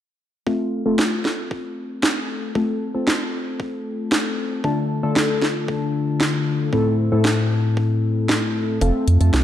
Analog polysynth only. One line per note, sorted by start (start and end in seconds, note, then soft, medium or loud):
0.47 0.83 A3 medium
0.47 0.83 C4 medium
0.47 0.83 F4 medium
0.47 0.83 A4 medium
0.86 2.52 A3 medium
0.86 2.52 C4 medium
0.86 2.52 F4 medium
0.86 2.52 A4 loud
2.55 2.91 A3 medium
2.55 2.91 C4 medium
2.55 2.91 F4 medium
2.55 2.91 A4 medium
2.94 4.61 A3 medium
2.94 4.61 C4 medium
2.94 4.61 F4 medium
2.94 4.61 A4 loud
4.64 5.00 D3 medium
4.64 5.00 A3 medium
4.64 5.00 D4 medium
4.64 5.00 F4 medium
4.64 5.00 A4 loud
5.03 6.70 D3 loud
5.03 6.70 A3 medium
5.03 6.70 D4 medium
5.03 6.70 F4 medium
5.03 6.70 A4 loud
6.73 7.09 A2 medium
6.73 7.09 A3 medium
6.73 7.09 C4 medium
6.73 7.09 E4 medium
6.73 7.09 A4 medium
7.12 8.78 A2 loud
7.12 8.78 A3 medium
7.12 8.78 C4 medium
7.12 8.78 E4 medium
7.12 8.78 A4 loud
8.82 9.18 A3 medium
8.82 9.18 C4 medium
8.82 9.18 F4 medium
8.82 9.18 A4 loud
9.21 9.44 A3 medium
9.21 9.44 C4 medium
9.21 9.44 F4 medium
9.21 9.44 A4 loud